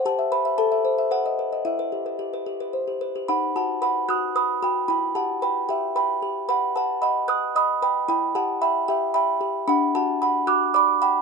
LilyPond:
\new Staff \with { instrumentName = "Music box" } { \time 3/4 \key e \minor \tempo 4 = 112 << { a''8 b''8 a''4 fis''4 | e''2 r4 | <fis'' b''>8 <fis'' a''>8 <fis'' b''>8 <dis''' fis'''>8 <b'' dis'''>8 <g'' b''>8 | <g'' b''>8 <fis'' a''>8 <g'' b''>8 <e'' g''>8 <g'' b''>4 |
<fis'' b''>8 <fis'' a''>8 <fis'' b''>8 <dis''' fis'''>8 <b'' dis'''>8 <g'' b''>8 | <g'' b''>8 <fis'' a''>8 <g'' b''>8 <e'' g''>8 <g'' b''>4 | <fis'' b''>8 <fis'' a''>8 <fis'' b''>8 <d''' fis'''>8 <b'' d'''>8 <g'' b''>8 | } \\ { g'16 e''16 b'16 e''16 a'16 e''16 c''16 e''16 b'16 dis''16 b'16 dis''16 | e'16 b'16 g'16 b'16 g'16 b'16 g'16 b'16 c''16 g'16 b'16 g'16 | dis'8 fis'8 b'8 fis'8 b'8 fis'8 | e'8 g'8 b'8 g'8 b'8 g'8 |
b'8 b'8 dis''8 b'8 dis''8 b'8 | e'8 g'8 e''8 g'8 e''8 g'8 | d'8 fis'8. r16 fis'8 d''8 fis''8 | } >> }